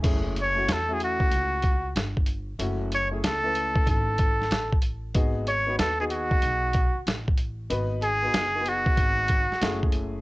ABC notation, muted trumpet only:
X:1
M:4/4
L:1/16
Q:"Swing 16ths" 1/4=94
K:F#dor
V:1 name="Muted trumpet"
z2 c2 A G F6 z4 | z2 c2 A4 A6 z2 | z2 c2 A G F6 z4 | z2 G4 F8 z2 |]